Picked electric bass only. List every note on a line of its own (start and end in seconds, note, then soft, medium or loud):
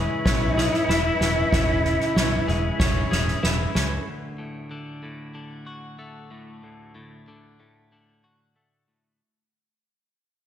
0.26 0.69 B1 medium
0.89 1.10 E1 medium
1.20 1.42 E1 medium
1.52 1.96 E1 medium
2.16 2.38 B1 medium
2.48 2.70 E1 medium
2.80 3.02 E1 medium
3.11 3.33 E1 medium
3.44 3.66 E1 medium
3.76 3.98 C#2 medium